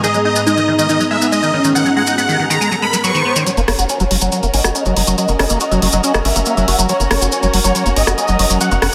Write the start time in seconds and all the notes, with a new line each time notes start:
Already playing: G#2 G#3 B3 A#5
0.04 D#3 G#4 D#5, riser, cabasa
0.14 F#3, cabasa
0.25 D#4 D#5
0.36 B3, cabasa
0.46 G#3 D#4 D#5, cabasa
0.57 D#3, cabasa
0.68 D#3
0.78 D#3 D#5, cabasa
0.89 D#3 D#4, cabasa
1.00 F#3, cabasa
1.11 G#3 E5
1.22 B3, cabasa
1.32 G#3 D#5, cabasa
1.43 D#3, cabasa
1.54 D#3 C#4
1.64 D#3, cabasa
1.75 D#3 F#5, cabasa
1.86 F#3, cabasa
1.96 G#3 F#5
2.07 D#4, cabasa
2.18 B3 F#5, cabasa
2.29 D#3, cabasa
2.39 D#3
2.50 D#3 A#5, cabasa
2.61 G#3, cabasa
2.71 F#3, cabasa
2.82 G#3 B5
2.93 F#3, cabasa
3.04 F#3 C#6, cabasa
3.14 D#3, cabasa
3.25 B3
3.36 D#3, cabasa
3.46 F#3 C#4 F#4 A#4 C#5, closed hi-hat, cabasa
3.57 F#1 A#3, closed hi-hat, cabasa
3.68 F#1 A#3 C#5, cross-stick, open hi-hat
3.79 F#1 F#4, closed hi-hat, cabasa
3.89 C#4 C#5, closed hi-hat, cabasa
4.00 F#1 F#3, closed hi-hat, cabasa
4.11 F#1 F#3, open hi-hat
4.21 F#1 F#3 C#5, closed hi-hat, cabasa
4.32 F#3, closed hi-hat, cabasa
4.43 F#1 A#3, closed hi-hat, cabasa
4.54 G#1 C#4 D#5, open hi-hat
4.64 F#1 F#4, cross-stick, closed hi-hat, cabasa
4.75 C#4 D#5, closed hi-hat, cabasa
4.85 F#1 F#3, closed hi-hat, cabasa
4.96 F#1 F#3, open hi-hat
5.07 F#1 F#3, closed hi-hat, cabasa
5.18 F#3 D#5, closed hi-hat, cabasa
5.28 F#1 A#3, closed hi-hat, cabasa
5.39 F#1 C#4 D#5, cross-stick, open hi-hat
5.50 F#1 A#3, closed hi-hat, cabasa
5.60 F#4 D#5, closed hi-hat, cabasa
5.71 F#1 F#3, closed hi-hat, cabasa
5.82 F#1 F#3, open hi-hat
5.92 F#1 F#3 D#5, closed hi-hat, cabasa
6.04 C#4, closed hi-hat, cabasa
6.14 F#1 A#3, cross-stick, closed hi-hat, cabasa
6.25 G#1 C#4 E5, open hi-hat
6.36 F#1 A#3, closed hi-hat, cabasa
6.45 A#3 E5, closed hi-hat, cabasa
6.57 F#1 F#3, closed hi-hat, cabasa
6.68 F#1 F#4, open hi-hat
6.79 F#1 F#3, closed hi-hat, cabasa
6.89 F#3 C#5, closed hi-hat, cabasa
7.00 F#1 A#3, closed hi-hat, cabasa
7.11 F#1 A#3 C#5, cross-stick, open hi-hat
7.21 F#1 F#4, closed hi-hat, cabasa
7.32 C#4 C#5, closed hi-hat, cabasa
7.43 F#1 F#3, closed hi-hat, cabasa
7.54 F#1 F#3, open hi-hat
7.64 F#1 F#3 C#5, closed hi-hat, cabasa
7.75 F#3, closed hi-hat, cabasa
7.86 F#1 A#3, closed hi-hat, cabasa
7.96 G#1 C#4 D#5, open hi-hat
8.07 F#1 F#4, cross-stick, cabasa
8.18 C#4 D#5, closed hi-hat, cabasa
8.28 F#1 F#3, closed hi-hat, cabasa
8.39 F#1 F#3, open hi-hat
8.50 F#1 F#3, closed hi-hat, cabasa
8.61 F#3 F#5, closed hi-hat, cabasa
8.71 F#1 A#3, closed hi-hat, cabasa
8.82 F#1 C#4 F#5, cross-stick, open hi-hat